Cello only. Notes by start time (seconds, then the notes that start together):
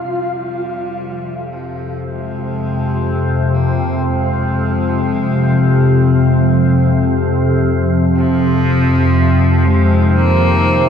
Already playing: G3
1.51 F3
2.03 G#3
3.54 A#3
4.06 G#3
8.16 F3
9.65 G#3
10.17 A#3